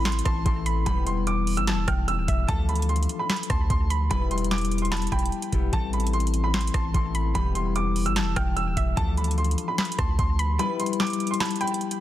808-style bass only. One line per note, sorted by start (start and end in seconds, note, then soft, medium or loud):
0.00 0.22 A1 loud
0.26 0.45 A1 loud
0.46 0.85 A1 loud
0.86 1.59 E1 loud
1.57 1.74 G1 loud
1.72 1.87 E1 loud
1.88 2.20 E1 loud
2.18 2.28 D1 loud
2.28 2.48 E1 loud
2.49 3.07 D2 loud
3.50 3.69 D2 loud
3.70 4.09 D2 loud
4.11 5.08 E1 loud
5.12 5.31 E1 loud
5.53 5.72 E1 loud
5.73 6.70 A1 loud
6.74 6.94 A1 loud
6.94 7.33 A1 loud
7.35 8.07 E1 loud
8.06 8.23 G1 loud
8.21 8.36 E1 loud
8.36 8.68 E1 loud
8.67 8.76 D1 loud
8.77 8.96 E1 loud
8.97 9.56 D2 loud
9.99 10.18 D2 loud
10.19 10.58 D2 loud